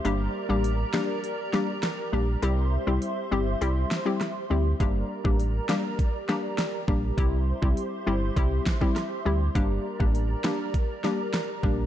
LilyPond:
<<
  \new Staff \with { instrumentName = "Analog synth pad" } { \time 4/4 \key g \dorian \tempo 4 = 101 << { <bes' d'' bes''>1 | <c'' e'' c'''>1 | <bes' d'' bes''>1 | <c'' e'' c'''>1 |
<bes' d'' bes''>1 | } \\ { g'1~ | g'1 | g'1~ | g'1~ |
g'1 | } >> }
  \new Staff \with { instrumentName = "Synth pluck" } { \time 4/4 \key g \dorian <g bes d' g'>8. <g bes d' g'>8. <g bes d' g'>8 r8 <g bes d' g'>16 r8. <g bes d' g'>8 | <g c' e' g'>8. <g c' e' g'>8. <g c' e' g'>8 <g c' e' g'>8. <g c' e' g'>16 r8 <g c' e' g'>16 r16 | <g bes d' g'>8. <g bes d' g'>8. <g bes d' g'>8 r8 <g bes d' g'>16 r8. <g bes d' g'>8 | <g c' e' g'>8. <g c' e' g'>8. <g c' e' g'>8 <g c' e' g'>8. <g c' e' g'>16 r8 <g c' e' g'>16 r16 |
<g bes d' g'>8. <g bes d' g'>8. <g bes d' g'>8 r8 <g bes d' g'>16 r8. <g bes d' g'>8 | }
  \new Staff \with { instrumentName = "Sub bass" } { \clef bass \time 4/4 \key g \dorian g,,8 r16 a,,8. r2 bes,,8 | c,8. c,16 r8 g,,8 c,8 r4 d,8 | g,,8 r16 a,,8. r2 bes,,8 | c,8. c,16 r8 g,,8 c,8 r4 d,8 |
g,,8 r16 a,,8. r2 bes,,8 | }
  \new DrumStaff \with { instrumentName = "Drums" } \drummode { \time 4/4 hh4 hh8 sn8 hh8 sn8 <hh ss sn>4 | hh4 hh4 hh8 sn8 <hh ss sn>4 | <hh bd>8. bd16 hh8 sn8 <hh bd>8 sn8 <hh ss sn>8 bd8 | <hh bd>8. bd16 hh4 <hh bd>8 <bd sn>16 bd16 <hh ss sn>4 |
<hh bd>8. bd16 hh8 sn8 <hh bd>8 sn8 <hh ss sn>8 bd8 | }
>>